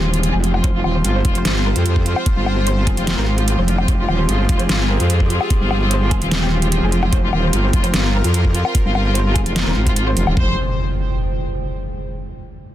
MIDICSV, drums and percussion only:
0, 0, Header, 1, 2, 480
1, 0, Start_track
1, 0, Key_signature, -4, "minor"
1, 0, Tempo, 405405
1, 758, Time_signature, 4, 2, 24, 8
1, 15094, End_track
2, 0, Start_track
2, 0, Title_t, "Drums"
2, 161, Note_on_c, 9, 42, 52
2, 277, Note_off_c, 9, 42, 0
2, 277, Note_on_c, 9, 42, 81
2, 396, Note_off_c, 9, 42, 0
2, 518, Note_on_c, 9, 42, 51
2, 636, Note_off_c, 9, 42, 0
2, 641, Note_on_c, 9, 77, 56
2, 757, Note_on_c, 9, 42, 75
2, 758, Note_on_c, 9, 36, 120
2, 759, Note_off_c, 9, 77, 0
2, 876, Note_off_c, 9, 36, 0
2, 876, Note_off_c, 9, 42, 0
2, 997, Note_on_c, 9, 77, 49
2, 1116, Note_off_c, 9, 77, 0
2, 1237, Note_on_c, 9, 42, 76
2, 1356, Note_off_c, 9, 42, 0
2, 1477, Note_on_c, 9, 42, 52
2, 1478, Note_on_c, 9, 36, 111
2, 1596, Note_off_c, 9, 36, 0
2, 1596, Note_off_c, 9, 42, 0
2, 1601, Note_on_c, 9, 42, 51
2, 1718, Note_off_c, 9, 42, 0
2, 1718, Note_on_c, 9, 38, 123
2, 1718, Note_on_c, 9, 42, 73
2, 1836, Note_off_c, 9, 38, 0
2, 1836, Note_off_c, 9, 42, 0
2, 2081, Note_on_c, 9, 42, 51
2, 2198, Note_off_c, 9, 42, 0
2, 2198, Note_on_c, 9, 42, 79
2, 2316, Note_off_c, 9, 42, 0
2, 2322, Note_on_c, 9, 36, 65
2, 2438, Note_on_c, 9, 42, 51
2, 2440, Note_off_c, 9, 36, 0
2, 2556, Note_off_c, 9, 42, 0
2, 2561, Note_on_c, 9, 77, 57
2, 2677, Note_on_c, 9, 42, 73
2, 2678, Note_on_c, 9, 36, 122
2, 2680, Note_off_c, 9, 77, 0
2, 2796, Note_off_c, 9, 36, 0
2, 2796, Note_off_c, 9, 42, 0
2, 2917, Note_on_c, 9, 77, 50
2, 3036, Note_off_c, 9, 77, 0
2, 3157, Note_on_c, 9, 42, 73
2, 3276, Note_off_c, 9, 42, 0
2, 3397, Note_on_c, 9, 42, 50
2, 3398, Note_on_c, 9, 36, 106
2, 3516, Note_off_c, 9, 36, 0
2, 3516, Note_off_c, 9, 42, 0
2, 3521, Note_on_c, 9, 42, 50
2, 3637, Note_off_c, 9, 42, 0
2, 3637, Note_on_c, 9, 38, 121
2, 3637, Note_on_c, 9, 42, 73
2, 3756, Note_off_c, 9, 38, 0
2, 3756, Note_off_c, 9, 42, 0
2, 4001, Note_on_c, 9, 42, 49
2, 4117, Note_off_c, 9, 42, 0
2, 4117, Note_on_c, 9, 42, 75
2, 4236, Note_off_c, 9, 42, 0
2, 4357, Note_on_c, 9, 42, 49
2, 4476, Note_off_c, 9, 42, 0
2, 4481, Note_on_c, 9, 77, 59
2, 4597, Note_on_c, 9, 36, 118
2, 4597, Note_on_c, 9, 42, 74
2, 4599, Note_off_c, 9, 77, 0
2, 4716, Note_off_c, 9, 36, 0
2, 4716, Note_off_c, 9, 42, 0
2, 4837, Note_on_c, 9, 77, 53
2, 4956, Note_off_c, 9, 77, 0
2, 5077, Note_on_c, 9, 42, 75
2, 5196, Note_off_c, 9, 42, 0
2, 5317, Note_on_c, 9, 36, 102
2, 5317, Note_on_c, 9, 42, 50
2, 5436, Note_off_c, 9, 36, 0
2, 5436, Note_off_c, 9, 42, 0
2, 5440, Note_on_c, 9, 42, 50
2, 5557, Note_off_c, 9, 42, 0
2, 5557, Note_on_c, 9, 38, 117
2, 5557, Note_on_c, 9, 42, 75
2, 5675, Note_off_c, 9, 38, 0
2, 5675, Note_off_c, 9, 42, 0
2, 5920, Note_on_c, 9, 42, 50
2, 6037, Note_off_c, 9, 42, 0
2, 6037, Note_on_c, 9, 42, 75
2, 6155, Note_off_c, 9, 42, 0
2, 6161, Note_on_c, 9, 36, 62
2, 6277, Note_on_c, 9, 42, 50
2, 6279, Note_off_c, 9, 36, 0
2, 6395, Note_off_c, 9, 42, 0
2, 6401, Note_on_c, 9, 77, 62
2, 6517, Note_on_c, 9, 36, 112
2, 6517, Note_on_c, 9, 42, 77
2, 6519, Note_off_c, 9, 77, 0
2, 6635, Note_off_c, 9, 36, 0
2, 6635, Note_off_c, 9, 42, 0
2, 6757, Note_on_c, 9, 77, 53
2, 6875, Note_off_c, 9, 77, 0
2, 6997, Note_on_c, 9, 42, 77
2, 7115, Note_off_c, 9, 42, 0
2, 7237, Note_on_c, 9, 36, 103
2, 7237, Note_on_c, 9, 42, 51
2, 7355, Note_off_c, 9, 36, 0
2, 7355, Note_off_c, 9, 42, 0
2, 7360, Note_on_c, 9, 42, 52
2, 7477, Note_off_c, 9, 42, 0
2, 7477, Note_on_c, 9, 38, 115
2, 7477, Note_on_c, 9, 42, 78
2, 7595, Note_off_c, 9, 38, 0
2, 7595, Note_off_c, 9, 42, 0
2, 7841, Note_on_c, 9, 42, 51
2, 7956, Note_off_c, 9, 42, 0
2, 7956, Note_on_c, 9, 42, 80
2, 8075, Note_off_c, 9, 42, 0
2, 8197, Note_on_c, 9, 42, 51
2, 8315, Note_off_c, 9, 42, 0
2, 8320, Note_on_c, 9, 77, 65
2, 8437, Note_on_c, 9, 36, 112
2, 8437, Note_on_c, 9, 42, 80
2, 8439, Note_off_c, 9, 77, 0
2, 8555, Note_off_c, 9, 42, 0
2, 8556, Note_off_c, 9, 36, 0
2, 8677, Note_on_c, 9, 77, 52
2, 8796, Note_off_c, 9, 77, 0
2, 8917, Note_on_c, 9, 42, 81
2, 9035, Note_off_c, 9, 42, 0
2, 9157, Note_on_c, 9, 36, 98
2, 9157, Note_on_c, 9, 42, 55
2, 9275, Note_off_c, 9, 42, 0
2, 9276, Note_off_c, 9, 36, 0
2, 9281, Note_on_c, 9, 42, 53
2, 9397, Note_off_c, 9, 42, 0
2, 9397, Note_on_c, 9, 38, 111
2, 9397, Note_on_c, 9, 42, 81
2, 9515, Note_off_c, 9, 38, 0
2, 9515, Note_off_c, 9, 42, 0
2, 9761, Note_on_c, 9, 42, 53
2, 9877, Note_off_c, 9, 42, 0
2, 9877, Note_on_c, 9, 42, 84
2, 9995, Note_off_c, 9, 42, 0
2, 10001, Note_on_c, 9, 36, 59
2, 10117, Note_on_c, 9, 42, 55
2, 10120, Note_off_c, 9, 36, 0
2, 10236, Note_off_c, 9, 42, 0
2, 10241, Note_on_c, 9, 77, 64
2, 10357, Note_on_c, 9, 42, 81
2, 10358, Note_on_c, 9, 36, 110
2, 10359, Note_off_c, 9, 77, 0
2, 10476, Note_off_c, 9, 36, 0
2, 10476, Note_off_c, 9, 42, 0
2, 10598, Note_on_c, 9, 77, 53
2, 10716, Note_off_c, 9, 77, 0
2, 10837, Note_on_c, 9, 42, 85
2, 10956, Note_off_c, 9, 42, 0
2, 11078, Note_on_c, 9, 36, 101
2, 11078, Note_on_c, 9, 42, 56
2, 11196, Note_off_c, 9, 36, 0
2, 11196, Note_off_c, 9, 42, 0
2, 11201, Note_on_c, 9, 42, 55
2, 11318, Note_off_c, 9, 42, 0
2, 11318, Note_on_c, 9, 38, 116
2, 11318, Note_on_c, 9, 42, 84
2, 11436, Note_off_c, 9, 38, 0
2, 11436, Note_off_c, 9, 42, 0
2, 11681, Note_on_c, 9, 36, 60
2, 11681, Note_on_c, 9, 42, 55
2, 11797, Note_off_c, 9, 42, 0
2, 11797, Note_on_c, 9, 42, 88
2, 11800, Note_off_c, 9, 36, 0
2, 11916, Note_off_c, 9, 42, 0
2, 12038, Note_on_c, 9, 42, 56
2, 12156, Note_off_c, 9, 42, 0
2, 12161, Note_on_c, 9, 77, 64
2, 12278, Note_on_c, 9, 36, 110
2, 12279, Note_off_c, 9, 77, 0
2, 12396, Note_off_c, 9, 36, 0
2, 15094, End_track
0, 0, End_of_file